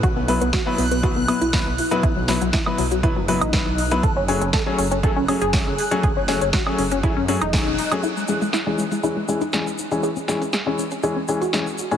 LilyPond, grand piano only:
\new Staff \with { instrumentName = "Grand piano" } { \time 4/4 \key cis \minor \tempo 4 = 120 r8 <b, fis b e' b'>16 r8 <b, fis b e' b'>16 r8 <b, fis b e' b'>16 r16 <b, fis b e' b'>16 r16 <b, fis b e' b'>16 r8 <b, fis b e' b'>16 | r8 <b, fis b e' b'>16 r8 <b, fis b e' b'>16 r8 <b, fis b e' b'>16 r16 <b, fis b e' b'>16 r16 <b, fis b e' b'>16 r8 <fis b e' b'>16 | r8 <fis a cis' gis'>16 r8 <fis a cis' gis'>16 r8 <fis a cis' gis'>16 r16 <fis a cis' gis'>16 r16 <fis a cis' gis'>16 r8 <fis a cis' gis'>16 | r8 <fis a cis' gis'>16 r8 <fis a cis' gis'>16 r8 <fis a cis' gis'>16 r16 <fis a cis' gis'>16 r16 <fis a cis' gis'>16 r8 <fis a cis' gis'>16 |
r8 <e gis cis' gis'>16 r8 <e gis cis' gis'>16 r8 <e gis cis' gis'>16 r16 <e gis cis' gis'>16 r16 <e gis cis' gis'>16 r8 <e gis cis' gis'>16 | r8 <e gis cis' gis'>16 r8 <e gis cis' gis'>16 r8 <e gis cis' gis'>16 r16 <e gis cis' gis'>16 r16 <e gis cis' gis'>16 r8 <a, e gis cis' gis'>16 | }